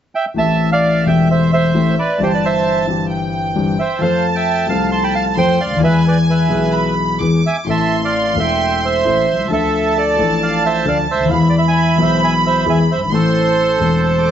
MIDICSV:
0, 0, Header, 1, 4, 480
1, 0, Start_track
1, 0, Key_signature, 0, "minor"
1, 0, Tempo, 455581
1, 391, Time_signature, 4, 2, 24, 8
1, 15077, End_track
2, 0, Start_track
2, 0, Title_t, "Violin section"
2, 0, Program_c, 0, 48
2, 390, Note_on_c, 0, 76, 76
2, 2280, Note_off_c, 0, 76, 0
2, 2321, Note_on_c, 0, 81, 88
2, 3269, Note_on_c, 0, 79, 79
2, 3275, Note_off_c, 0, 81, 0
2, 4184, Note_off_c, 0, 79, 0
2, 4223, Note_on_c, 0, 81, 93
2, 5169, Note_off_c, 0, 81, 0
2, 5182, Note_on_c, 0, 81, 84
2, 5626, Note_off_c, 0, 81, 0
2, 5656, Note_on_c, 0, 84, 82
2, 6135, Note_off_c, 0, 84, 0
2, 6138, Note_on_c, 0, 80, 99
2, 7058, Note_off_c, 0, 80, 0
2, 7089, Note_on_c, 0, 83, 84
2, 7583, Note_on_c, 0, 86, 77
2, 7585, Note_off_c, 0, 83, 0
2, 8077, Note_on_c, 0, 84, 93
2, 8078, Note_off_c, 0, 86, 0
2, 10007, Note_on_c, 0, 81, 96
2, 10008, Note_off_c, 0, 84, 0
2, 11871, Note_off_c, 0, 81, 0
2, 11919, Note_on_c, 0, 83, 99
2, 13814, Note_on_c, 0, 84, 90
2, 13817, Note_off_c, 0, 83, 0
2, 14782, Note_off_c, 0, 84, 0
2, 14788, Note_on_c, 0, 81, 69
2, 15013, Note_off_c, 0, 81, 0
2, 15020, Note_on_c, 0, 86, 71
2, 15077, Note_off_c, 0, 86, 0
2, 15077, End_track
3, 0, Start_track
3, 0, Title_t, "Bandoneon"
3, 0, Program_c, 1, 23
3, 157, Note_on_c, 1, 79, 78
3, 163, Note_on_c, 1, 76, 61
3, 265, Note_off_c, 1, 79, 0
3, 269, Note_off_c, 1, 76, 0
3, 399, Note_on_c, 1, 81, 91
3, 406, Note_on_c, 1, 76, 71
3, 736, Note_off_c, 1, 81, 0
3, 740, Note_off_c, 1, 76, 0
3, 761, Note_on_c, 1, 77, 85
3, 771, Note_on_c, 1, 74, 65
3, 1103, Note_off_c, 1, 74, 0
3, 1130, Note_on_c, 1, 79, 71
3, 1134, Note_off_c, 1, 77, 0
3, 1139, Note_on_c, 1, 76, 60
3, 1350, Note_off_c, 1, 79, 0
3, 1355, Note_off_c, 1, 76, 0
3, 1377, Note_on_c, 1, 76, 74
3, 1380, Note_on_c, 1, 72, 61
3, 1593, Note_off_c, 1, 76, 0
3, 1594, Note_off_c, 1, 72, 0
3, 1612, Note_on_c, 1, 76, 82
3, 1621, Note_on_c, 1, 72, 62
3, 2053, Note_off_c, 1, 76, 0
3, 2058, Note_off_c, 1, 72, 0
3, 2097, Note_on_c, 1, 74, 74
3, 2100, Note_on_c, 1, 71, 58
3, 2315, Note_off_c, 1, 71, 0
3, 2337, Note_off_c, 1, 74, 0
3, 2347, Note_on_c, 1, 67, 60
3, 2348, Note_on_c, 1, 72, 78
3, 2447, Note_off_c, 1, 67, 0
3, 2448, Note_off_c, 1, 72, 0
3, 2465, Note_on_c, 1, 71, 48
3, 2470, Note_on_c, 1, 74, 63
3, 2566, Note_off_c, 1, 71, 0
3, 2579, Note_off_c, 1, 74, 0
3, 2581, Note_on_c, 1, 72, 48
3, 2586, Note_on_c, 1, 76, 69
3, 3014, Note_off_c, 1, 72, 0
3, 3017, Note_off_c, 1, 76, 0
3, 3996, Note_on_c, 1, 76, 78
3, 4009, Note_on_c, 1, 72, 57
3, 4223, Note_off_c, 1, 72, 0
3, 4232, Note_on_c, 1, 77, 84
3, 4239, Note_off_c, 1, 76, 0
3, 4241, Note_on_c, 1, 72, 69
3, 4496, Note_off_c, 1, 77, 0
3, 4501, Note_off_c, 1, 72, 0
3, 4514, Note_on_c, 1, 81, 59
3, 4587, Note_off_c, 1, 81, 0
3, 4588, Note_on_c, 1, 79, 82
3, 4597, Note_on_c, 1, 76, 63
3, 4920, Note_off_c, 1, 79, 0
3, 4924, Note_off_c, 1, 76, 0
3, 4945, Note_on_c, 1, 81, 78
3, 4947, Note_on_c, 1, 77, 69
3, 5168, Note_off_c, 1, 77, 0
3, 5174, Note_off_c, 1, 81, 0
3, 5180, Note_on_c, 1, 84, 89
3, 5190, Note_on_c, 1, 81, 74
3, 5299, Note_off_c, 1, 81, 0
3, 5306, Note_off_c, 1, 84, 0
3, 5308, Note_on_c, 1, 83, 80
3, 5313, Note_on_c, 1, 79, 62
3, 5417, Note_off_c, 1, 83, 0
3, 5419, Note_off_c, 1, 79, 0
3, 5424, Note_on_c, 1, 81, 92
3, 5428, Note_on_c, 1, 77, 67
3, 5530, Note_off_c, 1, 81, 0
3, 5534, Note_off_c, 1, 77, 0
3, 5672, Note_on_c, 1, 79, 91
3, 5674, Note_on_c, 1, 72, 64
3, 5888, Note_off_c, 1, 72, 0
3, 5907, Note_on_c, 1, 77, 83
3, 5910, Note_on_c, 1, 74, 65
3, 5911, Note_off_c, 1, 79, 0
3, 6125, Note_off_c, 1, 77, 0
3, 6127, Note_off_c, 1, 74, 0
3, 6151, Note_on_c, 1, 71, 69
3, 6155, Note_on_c, 1, 76, 88
3, 6368, Note_off_c, 1, 71, 0
3, 6370, Note_off_c, 1, 76, 0
3, 6404, Note_on_c, 1, 71, 54
3, 6406, Note_on_c, 1, 74, 68
3, 6505, Note_off_c, 1, 71, 0
3, 6507, Note_off_c, 1, 74, 0
3, 6639, Note_on_c, 1, 71, 53
3, 6645, Note_on_c, 1, 76, 65
3, 7313, Note_off_c, 1, 71, 0
3, 7316, Note_off_c, 1, 76, 0
3, 7863, Note_on_c, 1, 76, 63
3, 7874, Note_on_c, 1, 80, 80
3, 7967, Note_off_c, 1, 76, 0
3, 7976, Note_off_c, 1, 80, 0
3, 8111, Note_on_c, 1, 76, 71
3, 8119, Note_on_c, 1, 81, 92
3, 8436, Note_off_c, 1, 76, 0
3, 8441, Note_off_c, 1, 81, 0
3, 8476, Note_on_c, 1, 74, 64
3, 8485, Note_on_c, 1, 77, 80
3, 8798, Note_off_c, 1, 74, 0
3, 8837, Note_off_c, 1, 77, 0
3, 8846, Note_on_c, 1, 76, 64
3, 8850, Note_on_c, 1, 79, 85
3, 9277, Note_off_c, 1, 76, 0
3, 9324, Note_on_c, 1, 72, 69
3, 9326, Note_off_c, 1, 79, 0
3, 9328, Note_on_c, 1, 76, 83
3, 9984, Note_off_c, 1, 72, 0
3, 10023, Note_off_c, 1, 76, 0
3, 10036, Note_on_c, 1, 69, 68
3, 10039, Note_on_c, 1, 76, 86
3, 10466, Note_off_c, 1, 69, 0
3, 10512, Note_on_c, 1, 74, 76
3, 10514, Note_on_c, 1, 69, 62
3, 10515, Note_off_c, 1, 76, 0
3, 10946, Note_off_c, 1, 69, 0
3, 10977, Note_off_c, 1, 74, 0
3, 10989, Note_on_c, 1, 77, 82
3, 10993, Note_on_c, 1, 74, 65
3, 11202, Note_off_c, 1, 74, 0
3, 11223, Note_off_c, 1, 77, 0
3, 11231, Note_on_c, 1, 76, 86
3, 11232, Note_on_c, 1, 72, 63
3, 11439, Note_off_c, 1, 76, 0
3, 11440, Note_off_c, 1, 72, 0
3, 11463, Note_on_c, 1, 77, 79
3, 11467, Note_on_c, 1, 74, 63
3, 11565, Note_off_c, 1, 77, 0
3, 11568, Note_off_c, 1, 74, 0
3, 11705, Note_on_c, 1, 76, 88
3, 11707, Note_on_c, 1, 72, 66
3, 11894, Note_off_c, 1, 72, 0
3, 11911, Note_on_c, 1, 77, 67
3, 11913, Note_off_c, 1, 76, 0
3, 11996, Note_off_c, 1, 77, 0
3, 12007, Note_on_c, 1, 76, 72
3, 12092, Note_off_c, 1, 76, 0
3, 12111, Note_on_c, 1, 74, 70
3, 12190, Note_off_c, 1, 74, 0
3, 12204, Note_on_c, 1, 76, 68
3, 12284, Note_off_c, 1, 76, 0
3, 12305, Note_on_c, 1, 80, 86
3, 12312, Note_on_c, 1, 76, 72
3, 12621, Note_off_c, 1, 80, 0
3, 12625, Note_off_c, 1, 76, 0
3, 12661, Note_on_c, 1, 76, 78
3, 12669, Note_on_c, 1, 72, 59
3, 12866, Note_off_c, 1, 76, 0
3, 12870, Note_off_c, 1, 72, 0
3, 12897, Note_on_c, 1, 80, 81
3, 12902, Note_on_c, 1, 76, 67
3, 12996, Note_off_c, 1, 80, 0
3, 13000, Note_off_c, 1, 76, 0
3, 13130, Note_on_c, 1, 76, 83
3, 13138, Note_on_c, 1, 72, 59
3, 13337, Note_off_c, 1, 76, 0
3, 13341, Note_off_c, 1, 72, 0
3, 13375, Note_on_c, 1, 80, 80
3, 13376, Note_on_c, 1, 76, 60
3, 13473, Note_off_c, 1, 80, 0
3, 13475, Note_off_c, 1, 76, 0
3, 13606, Note_on_c, 1, 76, 77
3, 13611, Note_on_c, 1, 72, 61
3, 13707, Note_off_c, 1, 76, 0
3, 13711, Note_off_c, 1, 72, 0
3, 13842, Note_on_c, 1, 72, 82
3, 13848, Note_on_c, 1, 69, 64
3, 15077, Note_off_c, 1, 69, 0
3, 15077, Note_off_c, 1, 72, 0
3, 15077, End_track
4, 0, Start_track
4, 0, Title_t, "Grand piano"
4, 0, Program_c, 2, 0
4, 361, Note_on_c, 2, 52, 61
4, 375, Note_on_c, 2, 57, 53
4, 382, Note_on_c, 2, 33, 70
4, 382, Note_on_c, 2, 45, 69
4, 391, Note_on_c, 2, 60, 54
4, 403, Note_on_c, 2, 67, 68
4, 1070, Note_off_c, 2, 52, 0
4, 1078, Note_off_c, 2, 57, 0
4, 1081, Note_off_c, 2, 33, 0
4, 1081, Note_off_c, 2, 45, 0
4, 1086, Note_off_c, 2, 60, 0
4, 1091, Note_on_c, 2, 52, 63
4, 1092, Note_off_c, 2, 67, 0
4, 1109, Note_on_c, 2, 57, 57
4, 1112, Note_on_c, 2, 28, 69
4, 1112, Note_on_c, 2, 40, 73
4, 1122, Note_on_c, 2, 60, 60
4, 1135, Note_on_c, 2, 67, 64
4, 1790, Note_off_c, 2, 52, 0
4, 1799, Note_off_c, 2, 57, 0
4, 1801, Note_off_c, 2, 28, 0
4, 1801, Note_off_c, 2, 40, 0
4, 1805, Note_off_c, 2, 60, 0
4, 1812, Note_off_c, 2, 67, 0
4, 1834, Note_on_c, 2, 52, 62
4, 1838, Note_on_c, 2, 57, 56
4, 1839, Note_on_c, 2, 33, 71
4, 1839, Note_on_c, 2, 45, 74
4, 1840, Note_on_c, 2, 67, 67
4, 1841, Note_on_c, 2, 60, 58
4, 2039, Note_off_c, 2, 52, 0
4, 2041, Note_off_c, 2, 57, 0
4, 2042, Note_off_c, 2, 33, 0
4, 2042, Note_off_c, 2, 45, 0
4, 2043, Note_off_c, 2, 60, 0
4, 2043, Note_off_c, 2, 67, 0
4, 2300, Note_on_c, 2, 43, 76
4, 2309, Note_on_c, 2, 52, 56
4, 2318, Note_on_c, 2, 55, 60
4, 2320, Note_on_c, 2, 31, 75
4, 2331, Note_on_c, 2, 60, 55
4, 2340, Note_on_c, 2, 67, 68
4, 2995, Note_off_c, 2, 52, 0
4, 2996, Note_off_c, 2, 43, 0
4, 2999, Note_off_c, 2, 55, 0
4, 3000, Note_off_c, 2, 31, 0
4, 3005, Note_off_c, 2, 60, 0
4, 3010, Note_off_c, 2, 67, 0
4, 3012, Note_on_c, 2, 43, 75
4, 3021, Note_on_c, 2, 52, 58
4, 3032, Note_on_c, 2, 55, 60
4, 3033, Note_on_c, 2, 31, 74
4, 3042, Note_on_c, 2, 60, 59
4, 3052, Note_on_c, 2, 67, 72
4, 3710, Note_off_c, 2, 52, 0
4, 3714, Note_off_c, 2, 43, 0
4, 3715, Note_off_c, 2, 31, 0
4, 3715, Note_off_c, 2, 55, 0
4, 3720, Note_off_c, 2, 60, 0
4, 3725, Note_off_c, 2, 67, 0
4, 3745, Note_on_c, 2, 43, 78
4, 3746, Note_on_c, 2, 52, 59
4, 3747, Note_on_c, 2, 55, 61
4, 3749, Note_on_c, 2, 31, 76
4, 3750, Note_on_c, 2, 60, 59
4, 3752, Note_on_c, 2, 67, 70
4, 3949, Note_off_c, 2, 52, 0
4, 3949, Note_off_c, 2, 55, 0
4, 3950, Note_off_c, 2, 31, 0
4, 3951, Note_off_c, 2, 43, 0
4, 3951, Note_off_c, 2, 60, 0
4, 3952, Note_off_c, 2, 67, 0
4, 4200, Note_on_c, 2, 53, 68
4, 4216, Note_off_c, 2, 53, 0
4, 4217, Note_on_c, 2, 57, 61
4, 4222, Note_on_c, 2, 53, 80
4, 4224, Note_on_c, 2, 41, 75
4, 4231, Note_on_c, 2, 60, 64
4, 4245, Note_on_c, 2, 69, 73
4, 4902, Note_off_c, 2, 57, 0
4, 4903, Note_off_c, 2, 53, 0
4, 4906, Note_off_c, 2, 41, 0
4, 4909, Note_off_c, 2, 60, 0
4, 4917, Note_off_c, 2, 69, 0
4, 4919, Note_on_c, 2, 53, 67
4, 4931, Note_on_c, 2, 57, 61
4, 4938, Note_on_c, 2, 48, 75
4, 4940, Note_on_c, 2, 36, 81
4, 4948, Note_on_c, 2, 60, 62
4, 4960, Note_on_c, 2, 69, 73
4, 5612, Note_off_c, 2, 53, 0
4, 5618, Note_off_c, 2, 57, 0
4, 5622, Note_off_c, 2, 48, 0
4, 5623, Note_off_c, 2, 36, 0
4, 5627, Note_off_c, 2, 60, 0
4, 5632, Note_off_c, 2, 69, 0
4, 5656, Note_on_c, 2, 53, 79
4, 5659, Note_on_c, 2, 41, 76
4, 5660, Note_on_c, 2, 57, 60
4, 5661, Note_on_c, 2, 60, 61
4, 5663, Note_on_c, 2, 69, 74
4, 5859, Note_off_c, 2, 41, 0
4, 5860, Note_off_c, 2, 57, 0
4, 5860, Note_off_c, 2, 60, 0
4, 5861, Note_off_c, 2, 53, 0
4, 5861, Note_off_c, 2, 69, 0
4, 5955, Note_on_c, 2, 37, 45
4, 6012, Note_on_c, 2, 38, 55
4, 6016, Note_off_c, 2, 37, 0
4, 6074, Note_on_c, 2, 39, 69
4, 6075, Note_off_c, 2, 38, 0
4, 6106, Note_on_c, 2, 52, 77
4, 6120, Note_on_c, 2, 56, 60
4, 6127, Note_on_c, 2, 40, 77
4, 6135, Note_off_c, 2, 39, 0
4, 6135, Note_on_c, 2, 59, 61
4, 6150, Note_on_c, 2, 68, 69
4, 6811, Note_off_c, 2, 52, 0
4, 6812, Note_off_c, 2, 56, 0
4, 6815, Note_off_c, 2, 40, 0
4, 6819, Note_off_c, 2, 59, 0
4, 6826, Note_on_c, 2, 52, 62
4, 6827, Note_off_c, 2, 68, 0
4, 6842, Note_on_c, 2, 56, 56
4, 6845, Note_on_c, 2, 35, 76
4, 6847, Note_on_c, 2, 47, 72
4, 6855, Note_on_c, 2, 59, 56
4, 6867, Note_on_c, 2, 68, 69
4, 7537, Note_off_c, 2, 52, 0
4, 7545, Note_off_c, 2, 56, 0
4, 7547, Note_off_c, 2, 35, 0
4, 7548, Note_off_c, 2, 47, 0
4, 7552, Note_off_c, 2, 59, 0
4, 7557, Note_off_c, 2, 68, 0
4, 7585, Note_on_c, 2, 52, 73
4, 7588, Note_on_c, 2, 56, 52
4, 7589, Note_on_c, 2, 40, 66
4, 7590, Note_on_c, 2, 59, 55
4, 7590, Note_on_c, 2, 68, 66
4, 7795, Note_off_c, 2, 56, 0
4, 7796, Note_off_c, 2, 40, 0
4, 7796, Note_off_c, 2, 52, 0
4, 7796, Note_off_c, 2, 68, 0
4, 7797, Note_off_c, 2, 59, 0
4, 8056, Note_on_c, 2, 52, 62
4, 8069, Note_on_c, 2, 57, 55
4, 8074, Note_on_c, 2, 33, 70
4, 8078, Note_on_c, 2, 45, 74
4, 8084, Note_on_c, 2, 60, 55
4, 8096, Note_on_c, 2, 69, 68
4, 8759, Note_off_c, 2, 52, 0
4, 8766, Note_off_c, 2, 57, 0
4, 8768, Note_off_c, 2, 33, 0
4, 8770, Note_off_c, 2, 45, 0
4, 8773, Note_off_c, 2, 60, 0
4, 8779, Note_off_c, 2, 69, 0
4, 8781, Note_on_c, 2, 52, 63
4, 8795, Note_on_c, 2, 57, 56
4, 8802, Note_on_c, 2, 28, 74
4, 8806, Note_on_c, 2, 40, 70
4, 8810, Note_on_c, 2, 60, 56
4, 8826, Note_on_c, 2, 69, 70
4, 9482, Note_off_c, 2, 52, 0
4, 9489, Note_off_c, 2, 57, 0
4, 9493, Note_off_c, 2, 28, 0
4, 9494, Note_off_c, 2, 40, 0
4, 9497, Note_off_c, 2, 60, 0
4, 9505, Note_off_c, 2, 69, 0
4, 9533, Note_on_c, 2, 52, 63
4, 9535, Note_on_c, 2, 57, 56
4, 9536, Note_on_c, 2, 33, 76
4, 9539, Note_on_c, 2, 45, 76
4, 9539, Note_on_c, 2, 60, 58
4, 9540, Note_on_c, 2, 69, 69
4, 9734, Note_off_c, 2, 52, 0
4, 9735, Note_off_c, 2, 33, 0
4, 9735, Note_off_c, 2, 57, 0
4, 9737, Note_off_c, 2, 45, 0
4, 9737, Note_off_c, 2, 60, 0
4, 9737, Note_off_c, 2, 69, 0
4, 9831, Note_on_c, 2, 35, 43
4, 9890, Note_off_c, 2, 35, 0
4, 9895, Note_on_c, 2, 36, 53
4, 9952, Note_off_c, 2, 36, 0
4, 9954, Note_on_c, 2, 37, 59
4, 9992, Note_on_c, 2, 53, 65
4, 10008, Note_on_c, 2, 57, 57
4, 10012, Note_off_c, 2, 37, 0
4, 10012, Note_on_c, 2, 38, 75
4, 10012, Note_on_c, 2, 50, 72
4, 10022, Note_on_c, 2, 62, 58
4, 10032, Note_on_c, 2, 69, 67
4, 10680, Note_off_c, 2, 53, 0
4, 10688, Note_off_c, 2, 57, 0
4, 10690, Note_off_c, 2, 38, 0
4, 10690, Note_off_c, 2, 50, 0
4, 10695, Note_off_c, 2, 62, 0
4, 10700, Note_off_c, 2, 69, 0
4, 10708, Note_on_c, 2, 53, 62
4, 10720, Note_on_c, 2, 57, 62
4, 10726, Note_on_c, 2, 45, 77
4, 10728, Note_on_c, 2, 33, 74
4, 10736, Note_on_c, 2, 62, 58
4, 10749, Note_on_c, 2, 69, 71
4, 11397, Note_off_c, 2, 53, 0
4, 11403, Note_off_c, 2, 57, 0
4, 11406, Note_off_c, 2, 45, 0
4, 11407, Note_off_c, 2, 33, 0
4, 11411, Note_off_c, 2, 62, 0
4, 11418, Note_off_c, 2, 69, 0
4, 11431, Note_on_c, 2, 53, 65
4, 11435, Note_on_c, 2, 38, 74
4, 11435, Note_on_c, 2, 57, 60
4, 11436, Note_on_c, 2, 62, 62
4, 11437, Note_on_c, 2, 50, 74
4, 11440, Note_on_c, 2, 69, 72
4, 11635, Note_off_c, 2, 53, 0
4, 11637, Note_off_c, 2, 38, 0
4, 11637, Note_off_c, 2, 57, 0
4, 11638, Note_off_c, 2, 50, 0
4, 11638, Note_off_c, 2, 62, 0
4, 11640, Note_off_c, 2, 69, 0
4, 11736, Note_on_c, 2, 37, 44
4, 11796, Note_off_c, 2, 37, 0
4, 11800, Note_on_c, 2, 38, 54
4, 11857, Note_off_c, 2, 38, 0
4, 11857, Note_on_c, 2, 39, 64
4, 11895, Note_on_c, 2, 52, 68
4, 11908, Note_on_c, 2, 56, 61
4, 11911, Note_off_c, 2, 52, 0
4, 11914, Note_on_c, 2, 40, 80
4, 11915, Note_off_c, 2, 39, 0
4, 11917, Note_on_c, 2, 52, 73
4, 11923, Note_on_c, 2, 59, 62
4, 11937, Note_on_c, 2, 68, 70
4, 12586, Note_off_c, 2, 52, 0
4, 12589, Note_off_c, 2, 56, 0
4, 12591, Note_off_c, 2, 40, 0
4, 12596, Note_off_c, 2, 59, 0
4, 12602, Note_on_c, 2, 52, 66
4, 12603, Note_off_c, 2, 68, 0
4, 12619, Note_on_c, 2, 56, 62
4, 12623, Note_on_c, 2, 47, 76
4, 12624, Note_on_c, 2, 35, 80
4, 12632, Note_on_c, 2, 59, 62
4, 12645, Note_on_c, 2, 68, 75
4, 13290, Note_off_c, 2, 52, 0
4, 13298, Note_off_c, 2, 56, 0
4, 13300, Note_off_c, 2, 47, 0
4, 13301, Note_off_c, 2, 35, 0
4, 13305, Note_off_c, 2, 59, 0
4, 13311, Note_off_c, 2, 68, 0
4, 13335, Note_on_c, 2, 52, 81
4, 13337, Note_on_c, 2, 56, 63
4, 13339, Note_on_c, 2, 40, 75
4, 13341, Note_on_c, 2, 59, 65
4, 13342, Note_on_c, 2, 68, 77
4, 13537, Note_off_c, 2, 56, 0
4, 13538, Note_off_c, 2, 40, 0
4, 13538, Note_off_c, 2, 52, 0
4, 13539, Note_off_c, 2, 59, 0
4, 13539, Note_off_c, 2, 68, 0
4, 13637, Note_on_c, 2, 30, 47
4, 13695, Note_on_c, 2, 31, 52
4, 13696, Note_off_c, 2, 30, 0
4, 13755, Note_off_c, 2, 31, 0
4, 13757, Note_on_c, 2, 32, 66
4, 13800, Note_on_c, 2, 52, 65
4, 13813, Note_on_c, 2, 57, 60
4, 13816, Note_off_c, 2, 32, 0
4, 13818, Note_on_c, 2, 33, 77
4, 13820, Note_on_c, 2, 45, 83
4, 13824, Note_on_c, 2, 60, 59
4, 13840, Note_on_c, 2, 69, 78
4, 14495, Note_off_c, 2, 52, 0
4, 14501, Note_off_c, 2, 57, 0
4, 14504, Note_off_c, 2, 33, 0
4, 14505, Note_off_c, 2, 45, 0
4, 14507, Note_off_c, 2, 60, 0
4, 14515, Note_off_c, 2, 69, 0
4, 14519, Note_on_c, 2, 52, 61
4, 14535, Note_on_c, 2, 57, 62
4, 14541, Note_on_c, 2, 28, 74
4, 14543, Note_on_c, 2, 40, 73
4, 14548, Note_on_c, 2, 60, 62
4, 14562, Note_on_c, 2, 69, 65
4, 15077, Note_off_c, 2, 28, 0
4, 15077, Note_off_c, 2, 40, 0
4, 15077, Note_off_c, 2, 52, 0
4, 15077, Note_off_c, 2, 57, 0
4, 15077, Note_off_c, 2, 60, 0
4, 15077, Note_off_c, 2, 69, 0
4, 15077, End_track
0, 0, End_of_file